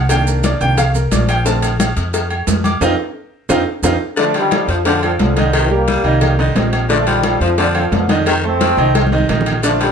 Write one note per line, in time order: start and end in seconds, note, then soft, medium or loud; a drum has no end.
0.00 0.55 C2 loud
0.09 0.58 D#3 medium
0.09 0.58 A#3 medium
0.09 0.59 D4 medium
0.09 0.26 G5 loud
0.09 cowbell loud
0.09 high conga soft
0.09 low agogo loud
0.09 maracas medium
0.27 0.43 A#4 medium
0.27 high conga soft
0.27 maracas medium
0.44 0.60 D5 medium
0.44 cowbell medium
0.44 high conga loud
0.44 low timbale medium
0.44 low agogo medium
0.44 maracas medium
0.61 1.08 C2 loud
0.61 0.76 D#3 soft
0.61 0.76 A#3 soft
0.61 0.76 D4 medium
0.61 0.77 G5 loud
0.61 low agogo medium
0.61 maracas soft
0.77 0.94 F5 medium
0.77 cowbell loud
0.77 high conga soft
0.77 low conga medium
0.77 low agogo loud
0.77 maracas medium
0.95 1.11 A#4 medium
0.95 high conga soft
0.95 low conga medium
0.95 maracas medium
1.11 1.91 A#1 medium
1.11 1.28 D5 medium
1.11 cowbell medium
1.11 high conga medium
1.11 low timbale medium
1.11 low agogo medium
1.11 maracas medium
1.29 1.45 G5 medium
1.29 cowbell medium
1.29 low agogo loud
1.29 maracas soft
1.45 1.68 D3 medium
1.45 1.68 A3 medium
1.45 1.68 C4 medium
1.45 1.93 A5 medium
1.45 cowbell loud
1.45 high conga soft
1.45 maracas medium
1.62 cowbell medium
1.62 high conga soft
1.62 low agogo medium
1.62 maracas medium
1.80 cowbell medium
1.80 high conga loud
1.80 low timbale medium
1.80 low agogo loud
1.80 maracas medium
1.97 2.44 F2 loud
1.97 cowbell medium
1.97 maracas soft
2.14 cowbell loud
2.14 high conga soft
2.14 low agogo medium
2.14 maracas medium
2.31 high conga soft
2.31 low agogo loud
2.47 2.79 F2 medium
2.47 cowbell medium
2.47 high conga medium
2.47 low timbale loud
2.47 maracas medium
2.64 2.81 D6 loud
2.64 cowbell medium
2.64 high conga medium
2.64 low agogo medium
2.64 maracas soft
2.81 2.94 F2 loud
2.81 2.92 C4 loud
2.81 2.93 D#4 loud
2.81 2.93 F4 loud
2.81 cowbell loud
2.81 low conga loud
2.81 high timbale loud
2.81 maracas loud
3.49 3.62 F2 loud
3.49 3.60 C4 loud
3.49 3.60 D#4 loud
3.49 3.61 F4 loud
3.49 cowbell loud
3.49 low conga loud
3.49 high timbale loud
3.49 maracas loud
3.83 3.96 F2 medium
3.83 3.95 C4 medium
3.83 3.94 D#4 medium
3.83 3.95 F4 loud
3.83 cowbell loud
3.83 low conga loud
3.83 high timbale loud
3.83 maracas loud
4.16 4.25 D3 loud
4.16 4.46 D3 medium
4.16 4.34 F3 medium
4.16 4.35 A3 medium
4.16 4.46 D4 medium
4.16 4.46 D5 medium
4.16 cowbell loud
4.16 high conga soft
4.34 4.67 D#3 medium
4.34 4.52 F3 medium
4.34 4.67 G3 loud
4.34 cowbell medium
4.34 high conga soft
4.34 low agogo medium
4.51 4.79 F3 medium
4.51 4.79 F4 medium
4.51 4.79 A4 medium
4.51 cowbell medium
4.51 high conga loud
4.51 low timbale medium
4.51 low agogo loud
4.68 5.15 F2 medium
4.68 4.86 D3 medium
4.68 4.77 F3 medium
4.68 4.87 F3 medium
4.68 cowbell medium
4.85 5.02 A#2 medium
4.85 5.00 D3 medium
4.85 5.02 D3 medium
4.85 5.13 F3 loud
4.85 5.00 D4 medium
4.85 5.00 D5 medium
4.85 cowbell loud
4.85 high conga soft
4.85 low agogo medium
5.03 5.11 A#2 medium
5.03 5.11 D3 medium
5.03 5.31 F3 medium
5.03 5.31 F4 medium
5.03 5.31 A4 medium
5.03 high conga soft
5.03 low agogo loud
5.19 5.99 C2 loud
5.19 5.52 A#2 medium
5.19 5.52 D3 medium
5.19 cowbell medium
5.19 high conga medium
5.19 low timbale medium
5.36 5.46 D3 medium
5.36 5.65 D#3 medium
5.36 5.65 D#4 medium
5.36 5.65 D#5 medium
5.36 cowbell medium
5.36 high conga medium
5.36 low agogo medium
5.53 5.71 C3 medium
5.53 5.71 D#3 medium
5.53 5.70 D#3 medium
5.53 cowbell loud
5.53 high conga soft
5.53 low agogo loud
5.70 5.98 G3 medium
5.70 6.35 G3 medium
5.70 6.39 A#3 loud
5.70 5.98 G4 medium
5.70 5.99 A#4 medium
5.70 high conga soft
5.88 6.15 G3 medium
5.88 cowbell medium
5.88 high conga loud
5.88 low timbale medium
5.88 low agogo medium
6.04 6.52 C2 loud
6.04 6.32 D#3 medium
6.04 6.32 D#4 medium
6.04 6.33 D#5 medium
6.04 low agogo medium
6.21 cowbell loud
6.21 high conga soft
6.21 low conga medium
6.21 low agogo loud
6.39 6.66 D3 medium
6.39 6.52 D#3 medium
6.39 6.53 D#4 medium
6.39 6.53 D#5 medium
6.39 high conga soft
6.39 low conga medium
6.55 7.35 A#1 loud
6.55 6.83 C3 medium
6.55 6.84 C4 medium
6.55 6.84 D#5 medium
6.55 cowbell medium
6.55 high conga medium
6.55 low timbale medium
6.55 low agogo medium
6.73 cowbell medium
6.73 low agogo loud
6.90 6.99 D3 loud
6.90 7.18 D3 medium
6.90 7.06 F3 medium
6.90 7.06 A3 medium
6.90 7.18 D4 medium
6.90 7.18 D5 medium
6.90 cowbell loud
6.90 high conga soft
7.07 7.41 D#3 medium
7.07 7.25 F3 medium
7.07 7.41 G3 loud
7.07 cowbell medium
7.07 high conga soft
7.07 low agogo medium
7.23 7.52 F3 medium
7.23 7.52 F4 medium
7.23 7.52 A4 medium
7.23 cowbell medium
7.23 high conga loud
7.23 low timbale medium
7.23 low agogo loud
7.41 7.88 F2 loud
7.41 7.58 D3 medium
7.41 7.50 F3 medium
7.41 7.57 F3 medium
7.41 cowbell medium
7.58 7.67 A#2 medium
7.58 7.72 D3 medium
7.58 7.66 D3 loud
7.58 7.86 F3 loud
7.58 7.72 D4 medium
7.58 7.72 D5 loud
7.58 cowbell loud
7.58 high conga soft
7.58 low agogo medium
7.75 7.83 A#2 medium
7.75 7.83 D3 medium
7.75 8.03 F3 medium
7.75 8.03 F4 medium
7.75 8.03 A4 medium
7.75 high conga soft
7.75 low agogo loud
7.92 8.72 F2 loud
7.92 8.24 A#2 medium
7.92 8.24 D3 medium
7.92 cowbell medium
7.92 high conga medium
7.92 low timbale medium
8.09 8.18 D3 medium
8.09 8.37 D#3 loud
8.09 8.37 D#4 loud
8.09 8.37 D#5 medium
8.09 cowbell medium
8.09 high conga medium
8.09 low agogo medium
8.26 8.35 C3 medium
8.26 8.45 D#3 loud
8.26 8.35 D#3 medium
8.26 cowbell loud
8.26 high conga soft
8.26 low agogo loud
8.44 8.72 A3 medium
8.44 9.08 A3 medium
8.44 9.08 C4 loud
8.44 8.72 A4 medium
8.44 8.72 C5 medium
8.44 high conga soft
8.60 8.88 F3 medium
8.60 cowbell medium
8.60 high conga medium
8.60 low timbale medium
8.60 low agogo medium
8.77 9.25 C2 loud
8.77 9.06 D#3 medium
8.77 9.06 D#4 medium
8.77 9.06 D#5 medium
8.77 low agogo medium
8.95 cowbell loud
8.95 high conga medium
8.95 low agogo loud
9.07 high conga medium
9.12 9.40 C3 medium
9.12 9.26 D#3 medium
9.12 9.26 D#4 medium
9.12 9.26 D#5 medium
9.18 high conga medium
9.29 9.92 A#1 medium
9.29 9.57 D#3 medium
9.29 9.57 D#4 medium
9.29 9.57 D#5 medium
9.29 cowbell medium
9.29 low conga medium
9.29 low timbale medium
9.29 low agogo medium
9.41 low conga loud
9.46 cowbell medium
9.46 low agogo loud
9.52 low conga loud
9.63 9.72 D3 loud
9.63 9.91 D3 medium
9.63 9.80 F3 medium
9.63 9.80 A3 medium
9.63 9.92 D4 medium
9.63 9.92 D5 medium
9.63 cowbell loud
9.63 maracas medium
9.80 9.92 D#3 medium
9.80 9.92 F3 medium
9.80 9.92 G3 loud
9.80 cowbell medium
9.80 high conga soft
9.80 low agogo medium